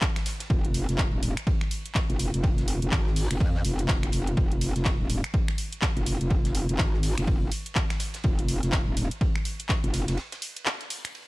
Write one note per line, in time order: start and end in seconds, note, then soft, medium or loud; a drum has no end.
0.01 kick loud
0.01 snare loud
0.01 clap loud
0.01 ride medium
0.16 finger snap medium
0.16 snare loud
0.16 closed hi-hat medium
0.16 ride medium
0.26 snare loud
0.26 open hi-hat loud
0.26 ride medium
0.40 snare loud
0.40 closed hi-hat medium
0.40 ride medium
0.50 0.86 F1 medium
0.50 kick loud
0.50 ride medium
0.65 closed hi-hat medium
0.74 open hi-hat loud
0.74 ride medium
0.89 1.11 F1 medium
0.89 snare soft
0.89 closed hi-hat medium
0.98 kick loud
0.98 snare loud
0.98 clap loud
0.98 ride medium
1.13 1.35 D#1 medium
1.23 open hi-hat loud
1.23 ride medium
1.37 finger snap medium
1.37 closed hi-hat medium
1.47 kick loud
1.47 ride medium
1.61 finger snap medium
1.61 snare soft
1.71 open hi-hat loud
1.71 ride medium
1.85 closed hi-hat medium
1.85 ride soft
1.95 kick loud
1.95 snare loud
1.95 clap loud
1.95 ride medium
2.10 2.32 F1 loud
2.10 closed hi-hat medium
2.19 open hi-hat loud
2.19 ride medium
2.34 2.80 F1 loud
2.34 closed hi-hat medium
2.44 kick loud
2.44 ride medium
2.58 snare medium
2.58 closed hi-hat soft
2.68 open hi-hat loud
2.68 ride medium
2.82 2.90 F1 medium
2.82 closed hi-hat medium
2.82 ride soft
2.92 3.28 G#1 loud
2.92 kick loud
2.92 snare loud
2.92 clap loud
2.92 ride loud
3.07 snare soft
3.16 open hi-hat medium
3.16 open hi-hat loud
3.31 3.39 F1 loud
3.31 finger snap medium
3.31 closed hi-hat medium
3.40 3.63 F2 medium
3.40 kick loud
3.40 ride medium
3.54 snare soft
3.65 3.87 F1 loud
3.65 open hi-hat loud
3.65 ride medium
3.79 closed hi-hat medium
3.79 ride soft
3.88 4.11 F1 loud
3.88 kick loud
3.88 snare loud
3.88 clap loud
3.88 ride loud
4.03 finger snap medium
4.03 closed hi-hat soft
4.12 4.36 F1 loud
4.12 open hi-hat loud
4.12 ride medium
4.27 closed hi-hat medium
4.27 ride soft
4.37 4.73 F1 loud
4.37 kick loud
4.37 ride medium
4.52 closed hi-hat soft
4.61 open hi-hat loud
4.61 ride medium
4.75 4.98 F1 medium
4.75 snare soft
4.75 closed hi-hat medium
4.85 kick loud
4.85 snare loud
4.85 clap loud
4.85 ride medium
5.00 5.22 D#1 loud
5.10 open hi-hat loud
5.10 ride medium
5.24 finger snap medium
5.24 closed hi-hat medium
5.34 kick loud
5.34 ride medium
5.48 finger snap medium
5.48 snare soft
5.58 open hi-hat loud
5.58 ride medium
5.73 closed hi-hat medium
5.73 ride soft
5.82 kick loud
5.82 snare loud
5.82 clap loud
5.82 ride loud
5.97 6.19 F1 loud
5.97 closed hi-hat soft
6.06 open hi-hat loud
6.06 ride medium
6.21 6.67 F1 loud
6.21 closed hi-hat medium
6.30 kick loud
6.30 ride medium
6.45 snare medium
6.45 closed hi-hat medium
6.55 open hi-hat loud
6.55 ride medium
6.69 6.77 F1 medium
6.69 closed hi-hat medium
6.69 ride soft
6.78 7.15 G#1 loud
6.78 kick loud
6.78 snare loud
6.78 clap loud
6.78 ride medium
6.94 snare soft
7.03 open hi-hat loud
7.03 open hi-hat medium
7.18 7.50 F1 loud
7.18 finger snap medium
7.18 closed hi-hat medium
7.27 kick loud
7.27 ride medium
7.52 open hi-hat loud
7.52 ride medium
7.66 closed hi-hat medium
7.66 ride soft
7.75 kick loud
7.75 snare loud
7.75 clap loud
7.75 ride medium
7.90 finger snap medium
7.90 snare loud
7.90 closed hi-hat medium
7.90 ride medium
8.00 snare loud
8.00 open hi-hat loud
8.00 ride medium
8.14 snare loud
8.14 closed hi-hat medium
8.14 ride medium
8.24 8.61 F1 loud
8.24 kick loud
8.24 ride medium
8.39 closed hi-hat medium
8.48 open hi-hat loud
8.48 ride medium
8.63 8.85 F1 medium
8.63 snare soft
8.63 closed hi-hat medium
8.72 kick loud
8.72 snare loud
8.72 clap loud
8.72 ride medium
8.87 9.09 D#1 loud
8.97 open hi-hat loud
8.97 ride medium
9.11 closed hi-hat medium
9.21 kick loud
9.21 ride medium
9.36 finger snap medium
9.36 snare soft
9.45 open hi-hat medium
9.45 ride medium
9.59 closed hi-hat medium
9.59 ride soft
9.69 kick loud
9.69 snare loud
9.69 clap loud
9.69 ride medium
9.84 10.06 F1 loud
9.84 closed hi-hat medium
9.94 snare loud
9.94 open hi-hat loud
9.94 ride medium
10.08 10.18 F1 medium
10.08 snare loud
10.08 closed hi-hat medium
10.08 ride medium
10.17 snare loud
10.17 ride medium
10.32 snare loud
10.32 closed hi-hat medium
10.32 ride medium
10.42 open hi-hat loud
10.56 closed hi-hat medium
10.56 ride medium
10.66 snare loud
10.66 clap loud
10.66 ride medium
10.81 snare soft
10.81 closed hi-hat soft
10.90 open hi-hat loud
10.90 open hi-hat medium
11.05 finger snap medium
11.05 closed hi-hat medium
11.15 ride medium